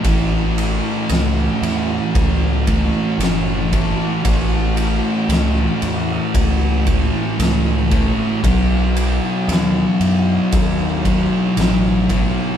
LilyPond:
<<
  \new Staff \with { instrumentName = "Distorted electric guitar" } { \clef bass \time 4/4 \key a \lydian \tempo 4 = 57 <a, e a>2.~ <a, e a>8 <a, e a>8 | <a, e a>2.~ <a, e a>8 <a, e a>8 | <b, fis b>2.~ <b, fis b>8 <b, fis b>8 | }
  \new Staff \with { instrumentName = "Distorted electric guitar" } { \clef bass \time 4/4 \key a \lydian <a, e a>2~ <a, e a>8 <a, e a>8 <a, e a>4 | <a, e a>2~ <a, e a>8 <a, e a>8 <a, e a>4 | <b, fis b>2~ <b, fis b>8 <b, fis b>8 <b, fis b>4 | }
  \new Staff \with { instrumentName = "Picked electric bass" } { \clef bass \time 4/4 \key a \lydian a,,4 cis,8 e,8 cis,4 fis,,4 | a,,4 cis,8 e,8 cis,4 cis,4 | b,,4 dis,8 fis,8 dis,4 a,,4 | }
  \new DrumStaff \with { instrumentName = "Drums" } \drummode { \time 4/4 <bd cymr>8 cymr8 <cymr sn>8 <cymr sn>8 <bd cymr>8 <bd cymr>8 <cymr sn>8 <bd cymr>8 | <bd cymr>8 cymr8 <cymr sn>8 cymr8 <bd cymr>8 <bd cymr>8 <cymr sn>8 <bd cymr>8 | <bd cymr>8 cymr8 <cymr sn>8 cymr8 <bd cymr>8 <bd cymr>8 <cymr sn>8 <bd cymr>8 | }
>>